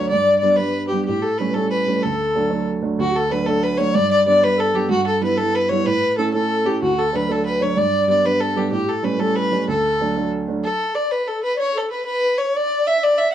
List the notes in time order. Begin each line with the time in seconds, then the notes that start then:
Already playing: F#3 A3 D4 C#5
0.09 G2 D5
0.39 D5
0.43 G3 B3 D4
0.56 G3 B4
0.60 B3 D4
0.88 G4
0.92 G3 B3 D4 G4
1.05 A2 G4
1.22 A4
1.38 G3 A3 C#4 B4
1.54 G3 A3 C#4 A4
1.70 B4
1.87 G3 A3 C#4
1.95 B4
2.02 D2 A4
2.36 F#3 A3 D4
2.50 F#3 A3 D4
2.82 F#3 A3 D4
2.99 D2 F#4
3.10 G4
3.15 A4
3.30 F#3 A3 D4 B4
3.46 F#3 A3 D4 A4
3.63 B4
3.78 F#3 A3 D4 C#5
3.93 G2 D5
4.09 D5
4.26 G3 B3 D4 D5
4.41 G3 B3 D4 B4
4.58 A4
4.75 G3 B3 D4 G4
4.89 G2 F#4
5.06 A4
5.21 G3 B3 E4 B4
5.36 G3 B3 E4 A4
5.54 B4
5.69 G3 B3 E4 C#5
5.84 A2 B4
6.17 A3 C#4 E4 A4
6.33 A3 C#4 E4 A4
6.65 A3 C#4 E4 G4
6.81 D2 F#4
6.97 A4
7.13 F#3 A3 D4 B4
7.29 F#3 A3 D4 A4
7.44 B4
7.60 F#3 A3 D4 C#5
7.76 G2 D5
8.07 G3 B3 D4 D5
8.23 G3 B3 D4 B4
8.40 A4
8.56 G3 B3 D4 G4
8.72 A2 G4
8.88 A4
9.03 G3 A3 C#4 B4
9.19 G3 A3 C#4 A4
9.36 B4
9.52 G3 A3 C#4
9.61 B4
9.68 D2 A4
10.01 F#3 A3 D4
10.16 F#3 A3 D4
10.48 F#3 A3 D4
10.64 A4
10.95 D5
11.11 B4
11.27 A4
11.43 B4
11.56 C#5 D5
11.60 C#5
11.74 A4
11.90 B4
12.05 B4
12.23 B4
12.38 C#5
12.56 D5
12.86 E5
13.03 D5
13.18 E5